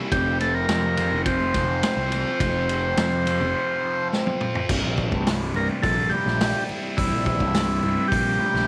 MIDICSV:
0, 0, Header, 1, 5, 480
1, 0, Start_track
1, 0, Tempo, 571429
1, 99, Time_signature, 4, 2, 24, 8
1, 7286, End_track
2, 0, Start_track
2, 0, Title_t, "Transistor combo organ"
2, 0, Program_c, 0, 18
2, 98, Note_on_c, 0, 67, 100
2, 322, Note_off_c, 0, 67, 0
2, 344, Note_on_c, 0, 69, 91
2, 453, Note_off_c, 0, 69, 0
2, 458, Note_on_c, 0, 70, 101
2, 1025, Note_off_c, 0, 70, 0
2, 1062, Note_on_c, 0, 72, 89
2, 3428, Note_off_c, 0, 72, 0
2, 4670, Note_on_c, 0, 70, 95
2, 4776, Note_off_c, 0, 70, 0
2, 4892, Note_on_c, 0, 69, 100
2, 5120, Note_on_c, 0, 67, 81
2, 5143, Note_off_c, 0, 69, 0
2, 5576, Note_off_c, 0, 67, 0
2, 5854, Note_on_c, 0, 64, 99
2, 6091, Note_off_c, 0, 64, 0
2, 6101, Note_on_c, 0, 64, 89
2, 6785, Note_off_c, 0, 64, 0
2, 6787, Note_on_c, 0, 67, 99
2, 7286, Note_off_c, 0, 67, 0
2, 7286, End_track
3, 0, Start_track
3, 0, Title_t, "Distorted electric guitar"
3, 0, Program_c, 1, 30
3, 0, Note_on_c, 1, 55, 60
3, 0, Note_on_c, 1, 58, 70
3, 0, Note_on_c, 1, 64, 73
3, 88, Note_on_c, 1, 41, 78
3, 94, Note_off_c, 1, 58, 0
3, 95, Note_off_c, 1, 64, 0
3, 114, Note_off_c, 1, 55, 0
3, 336, Note_on_c, 1, 48, 72
3, 562, Note_off_c, 1, 48, 0
3, 572, Note_on_c, 1, 48, 73
3, 815, Note_on_c, 1, 60, 71
3, 1054, Note_on_c, 1, 65, 85
3, 1290, Note_on_c, 1, 53, 62
3, 1294, Note_off_c, 1, 41, 0
3, 1532, Note_off_c, 1, 60, 0
3, 1536, Note_on_c, 1, 60, 71
3, 1766, Note_off_c, 1, 65, 0
3, 1776, Note_off_c, 1, 48, 0
3, 1776, Note_on_c, 1, 65, 71
3, 2016, Note_on_c, 1, 41, 69
3, 2262, Note_on_c, 1, 48, 70
3, 2488, Note_off_c, 1, 48, 0
3, 2496, Note_off_c, 1, 53, 0
3, 2498, Note_on_c, 1, 48, 71
3, 2729, Note_off_c, 1, 60, 0
3, 2739, Note_on_c, 1, 60, 71
3, 2969, Note_off_c, 1, 65, 0
3, 2979, Note_on_c, 1, 65, 79
3, 3219, Note_off_c, 1, 41, 0
3, 3220, Note_on_c, 1, 53, 66
3, 3453, Note_off_c, 1, 60, 0
3, 3463, Note_on_c, 1, 60, 78
3, 3695, Note_off_c, 1, 65, 0
3, 3700, Note_off_c, 1, 48, 0
3, 3705, Note_on_c, 1, 65, 71
3, 3940, Note_off_c, 1, 53, 0
3, 3942, Note_off_c, 1, 60, 0
3, 3943, Note_off_c, 1, 65, 0
3, 3943, Note_on_c, 1, 36, 76
3, 4182, Note_on_c, 1, 43, 71
3, 4425, Note_on_c, 1, 48, 72
3, 4664, Note_on_c, 1, 55, 71
3, 4904, Note_on_c, 1, 58, 78
3, 5141, Note_off_c, 1, 36, 0
3, 5147, Note_on_c, 1, 64, 70
3, 5379, Note_off_c, 1, 55, 0
3, 5380, Note_off_c, 1, 43, 0
3, 5382, Note_on_c, 1, 55, 75
3, 5612, Note_off_c, 1, 64, 0
3, 5621, Note_off_c, 1, 48, 0
3, 5622, Note_on_c, 1, 64, 77
3, 5858, Note_on_c, 1, 36, 75
3, 6101, Note_off_c, 1, 58, 0
3, 6105, Note_on_c, 1, 43, 74
3, 6341, Note_on_c, 1, 48, 69
3, 6575, Note_off_c, 1, 55, 0
3, 6579, Note_on_c, 1, 55, 71
3, 6819, Note_off_c, 1, 64, 0
3, 6819, Note_on_c, 1, 58, 81
3, 7056, Note_off_c, 1, 36, 0
3, 7057, Note_on_c, 1, 64, 73
3, 7286, Note_off_c, 1, 43, 0
3, 7286, Note_off_c, 1, 48, 0
3, 7286, Note_off_c, 1, 55, 0
3, 7286, Note_off_c, 1, 58, 0
3, 7286, Note_off_c, 1, 64, 0
3, 7286, End_track
4, 0, Start_track
4, 0, Title_t, "Picked electric bass"
4, 0, Program_c, 2, 34
4, 97, Note_on_c, 2, 29, 105
4, 544, Note_off_c, 2, 29, 0
4, 576, Note_on_c, 2, 41, 88
4, 939, Note_on_c, 2, 29, 91
4, 952, Note_off_c, 2, 41, 0
4, 1269, Note_off_c, 2, 29, 0
4, 1298, Note_on_c, 2, 29, 88
4, 1518, Note_off_c, 2, 29, 0
4, 1653, Note_on_c, 2, 36, 80
4, 1876, Note_off_c, 2, 36, 0
4, 2016, Note_on_c, 2, 29, 100
4, 2464, Note_off_c, 2, 29, 0
4, 2495, Note_on_c, 2, 41, 89
4, 2858, Note_on_c, 2, 29, 85
4, 2870, Note_off_c, 2, 41, 0
4, 2969, Note_off_c, 2, 29, 0
4, 3941, Note_on_c, 2, 24, 96
4, 4048, Note_off_c, 2, 24, 0
4, 4053, Note_on_c, 2, 34, 82
4, 4276, Note_off_c, 2, 34, 0
4, 4301, Note_on_c, 2, 24, 91
4, 4630, Note_off_c, 2, 24, 0
4, 4658, Note_on_c, 2, 24, 98
4, 4769, Note_off_c, 2, 24, 0
4, 4901, Note_on_c, 2, 34, 85
4, 5120, Note_off_c, 2, 34, 0
4, 5258, Note_on_c, 2, 34, 84
4, 5478, Note_off_c, 2, 34, 0
4, 5861, Note_on_c, 2, 24, 98
4, 5970, Note_off_c, 2, 24, 0
4, 5974, Note_on_c, 2, 34, 92
4, 6196, Note_off_c, 2, 34, 0
4, 6216, Note_on_c, 2, 24, 97
4, 6546, Note_off_c, 2, 24, 0
4, 6580, Note_on_c, 2, 24, 93
4, 6689, Note_off_c, 2, 24, 0
4, 6819, Note_on_c, 2, 34, 90
4, 7038, Note_off_c, 2, 34, 0
4, 7176, Note_on_c, 2, 34, 88
4, 7286, Note_off_c, 2, 34, 0
4, 7286, End_track
5, 0, Start_track
5, 0, Title_t, "Drums"
5, 98, Note_on_c, 9, 36, 101
5, 99, Note_on_c, 9, 51, 81
5, 182, Note_off_c, 9, 36, 0
5, 183, Note_off_c, 9, 51, 0
5, 337, Note_on_c, 9, 63, 70
5, 339, Note_on_c, 9, 51, 64
5, 421, Note_off_c, 9, 63, 0
5, 423, Note_off_c, 9, 51, 0
5, 576, Note_on_c, 9, 51, 82
5, 579, Note_on_c, 9, 38, 113
5, 660, Note_off_c, 9, 51, 0
5, 663, Note_off_c, 9, 38, 0
5, 696, Note_on_c, 9, 63, 75
5, 780, Note_off_c, 9, 63, 0
5, 816, Note_on_c, 9, 51, 70
5, 816, Note_on_c, 9, 64, 78
5, 900, Note_off_c, 9, 51, 0
5, 900, Note_off_c, 9, 64, 0
5, 1055, Note_on_c, 9, 51, 74
5, 1056, Note_on_c, 9, 36, 101
5, 1139, Note_off_c, 9, 51, 0
5, 1140, Note_off_c, 9, 36, 0
5, 1178, Note_on_c, 9, 63, 75
5, 1262, Note_off_c, 9, 63, 0
5, 1295, Note_on_c, 9, 51, 66
5, 1296, Note_on_c, 9, 36, 89
5, 1298, Note_on_c, 9, 38, 31
5, 1299, Note_on_c, 9, 64, 72
5, 1379, Note_off_c, 9, 51, 0
5, 1380, Note_off_c, 9, 36, 0
5, 1382, Note_off_c, 9, 38, 0
5, 1383, Note_off_c, 9, 64, 0
5, 1536, Note_on_c, 9, 51, 93
5, 1539, Note_on_c, 9, 38, 121
5, 1620, Note_off_c, 9, 51, 0
5, 1623, Note_off_c, 9, 38, 0
5, 1779, Note_on_c, 9, 51, 70
5, 1780, Note_on_c, 9, 63, 70
5, 1780, Note_on_c, 9, 64, 68
5, 1863, Note_off_c, 9, 51, 0
5, 1864, Note_off_c, 9, 63, 0
5, 1864, Note_off_c, 9, 64, 0
5, 2018, Note_on_c, 9, 36, 99
5, 2019, Note_on_c, 9, 51, 86
5, 2102, Note_off_c, 9, 36, 0
5, 2103, Note_off_c, 9, 51, 0
5, 2261, Note_on_c, 9, 51, 74
5, 2345, Note_off_c, 9, 51, 0
5, 2497, Note_on_c, 9, 51, 94
5, 2501, Note_on_c, 9, 38, 106
5, 2581, Note_off_c, 9, 51, 0
5, 2585, Note_off_c, 9, 38, 0
5, 2620, Note_on_c, 9, 63, 69
5, 2704, Note_off_c, 9, 63, 0
5, 2736, Note_on_c, 9, 64, 72
5, 2745, Note_on_c, 9, 51, 78
5, 2820, Note_off_c, 9, 64, 0
5, 2829, Note_off_c, 9, 51, 0
5, 3469, Note_on_c, 9, 38, 68
5, 3553, Note_off_c, 9, 38, 0
5, 3584, Note_on_c, 9, 48, 63
5, 3668, Note_off_c, 9, 48, 0
5, 3702, Note_on_c, 9, 45, 89
5, 3786, Note_off_c, 9, 45, 0
5, 3823, Note_on_c, 9, 43, 89
5, 3907, Note_off_c, 9, 43, 0
5, 3941, Note_on_c, 9, 49, 106
5, 3942, Note_on_c, 9, 36, 113
5, 4025, Note_off_c, 9, 49, 0
5, 4026, Note_off_c, 9, 36, 0
5, 4176, Note_on_c, 9, 64, 74
5, 4182, Note_on_c, 9, 36, 84
5, 4260, Note_off_c, 9, 64, 0
5, 4266, Note_off_c, 9, 36, 0
5, 4297, Note_on_c, 9, 63, 80
5, 4302, Note_on_c, 9, 36, 83
5, 4381, Note_off_c, 9, 63, 0
5, 4386, Note_off_c, 9, 36, 0
5, 4423, Note_on_c, 9, 46, 59
5, 4426, Note_on_c, 9, 38, 117
5, 4507, Note_off_c, 9, 46, 0
5, 4510, Note_off_c, 9, 38, 0
5, 4657, Note_on_c, 9, 64, 76
5, 4741, Note_off_c, 9, 64, 0
5, 4781, Note_on_c, 9, 63, 71
5, 4865, Note_off_c, 9, 63, 0
5, 4900, Note_on_c, 9, 36, 95
5, 4902, Note_on_c, 9, 46, 51
5, 4984, Note_off_c, 9, 36, 0
5, 4986, Note_off_c, 9, 46, 0
5, 5137, Note_on_c, 9, 63, 83
5, 5221, Note_off_c, 9, 63, 0
5, 5268, Note_on_c, 9, 38, 32
5, 5352, Note_off_c, 9, 38, 0
5, 5381, Note_on_c, 9, 46, 68
5, 5382, Note_on_c, 9, 64, 77
5, 5384, Note_on_c, 9, 38, 119
5, 5465, Note_off_c, 9, 46, 0
5, 5466, Note_off_c, 9, 64, 0
5, 5468, Note_off_c, 9, 38, 0
5, 5503, Note_on_c, 9, 63, 77
5, 5587, Note_off_c, 9, 63, 0
5, 5621, Note_on_c, 9, 64, 76
5, 5705, Note_off_c, 9, 64, 0
5, 5862, Note_on_c, 9, 36, 110
5, 5864, Note_on_c, 9, 46, 60
5, 5946, Note_off_c, 9, 36, 0
5, 5948, Note_off_c, 9, 46, 0
5, 6100, Note_on_c, 9, 36, 77
5, 6102, Note_on_c, 9, 64, 79
5, 6184, Note_off_c, 9, 36, 0
5, 6186, Note_off_c, 9, 64, 0
5, 6219, Note_on_c, 9, 36, 81
5, 6222, Note_on_c, 9, 63, 81
5, 6303, Note_off_c, 9, 36, 0
5, 6306, Note_off_c, 9, 63, 0
5, 6336, Note_on_c, 9, 46, 69
5, 6339, Note_on_c, 9, 38, 108
5, 6420, Note_off_c, 9, 46, 0
5, 6423, Note_off_c, 9, 38, 0
5, 6576, Note_on_c, 9, 64, 77
5, 6660, Note_off_c, 9, 64, 0
5, 6699, Note_on_c, 9, 63, 79
5, 6783, Note_off_c, 9, 63, 0
5, 6821, Note_on_c, 9, 36, 106
5, 6821, Note_on_c, 9, 46, 60
5, 6905, Note_off_c, 9, 36, 0
5, 6905, Note_off_c, 9, 46, 0
5, 7054, Note_on_c, 9, 63, 88
5, 7138, Note_off_c, 9, 63, 0
5, 7186, Note_on_c, 9, 38, 37
5, 7270, Note_off_c, 9, 38, 0
5, 7286, End_track
0, 0, End_of_file